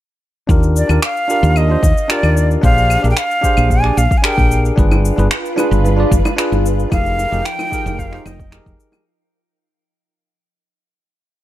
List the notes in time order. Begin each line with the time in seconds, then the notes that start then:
0.47 D#2 D4 F4 G4 A#4, kick, cabasa
0.63 cabasa
0.76 D5, cabasa
0.88 D#2 D4 F4 G4 A#4, cabasa, claves
1.02 F5, finger snap, cabasa
1.17 cabasa
1.28 D4 F4 G4 A#4, cabasa
1.43 D#2, cabasa
1.56 D#5, cabasa, claves
1.68 D4 F4 G4 C5
1.83 D#2, kick, cabasa
1.98 cabasa
2.08 D4 F4 G4 A#4 D5, finger snap, cabasa
2.23 D#2, cabasa, claves
2.37 cabasa
2.51 cabasa
2.61 A#1 D4 G4 G#4 C5 F5, kick, cabasa
2.78 cabasa
2.90 cabasa, claves
3.02 A#1 D4 G4 G#4 A#4, cabasa
3.11 G5
3.17 F5, finger snap, cabasa
3.31 cabasa
3.42 D4 G4 G#4 C5, kick, cabasa
3.57 A#1, cabasa, claves
3.70 G#5, kick, cabasa
3.82 D4 G4 G#4 D5, finger snap
3.97 A#1 F5, cabasa
4.11 kick, cabasa
4.18 G#5
4.22 D4 G4 G#4 A#4 G5, finger snap, cabasa, claves
4.38 A#1, kick, cabasa
4.51 cabasa
4.65 cabasa
4.76 G1 D4 F4 G#4 B4, kick, cabasa
4.91 high bongo, cabasa, claves
5.05 cabasa
5.16 G1 D4 F4 G#4 B4, high bongo, cabasa
5.31 finger snap, cabasa
5.46 cabasa
5.56 D4 F4 G#4 B4, high bongo, cabasa, claves
5.71 G1, cabasa
5.85 high bongo, cabasa
5.96 D4 F4 G#4 D5
6.11 G1, kick, cabasa
6.25 high bongo, cabasa, claves
6.36 D4 F4 G#4 B4, finger snap, cabasa
6.52 G1, high bongo, cabasa
6.66 cabasa
6.79 cabasa
6.90 F1 F3 D#4 G4 G#4 A#4 F5 G5, kick, high bongo, cabasa, claves
7.06 cabasa
7.18 high bongo, cabasa
7.31 F1 D#4 G4 G#4 A#4, cabasa
7.45 G5, finger snap, cabasa
7.59 high bongo, cabasa, claves
7.70 D#4 G4 G#4 A#4, kick, cabasa
7.86 F1, high bongo, cabasa
7.99 F5, kick, cabasa
8.11 D#4 G4 G#4 C5, finger snap
8.25 F1 D#5, high bongo, cabasa, claves
8.39 kick, cabasa
8.51 D#4 G4 G#4 A#4, finger snap, high bongo, cabasa
8.66 F1, kick, cabasa
8.80 cabasa
8.92 high bongo, cabasa, claves